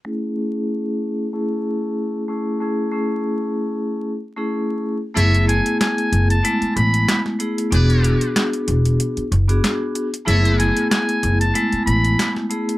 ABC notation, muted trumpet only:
X:1
M:4/4
L:1/16
Q:"Swing 16ths" 1/4=94
K:A
V:1 name="Muted trumpet"
z16 | z16 | [K:F#m] e2 g2 g3 a3 b3 z3 | z16 |
e2 g2 g3 a3 b3 z3 |]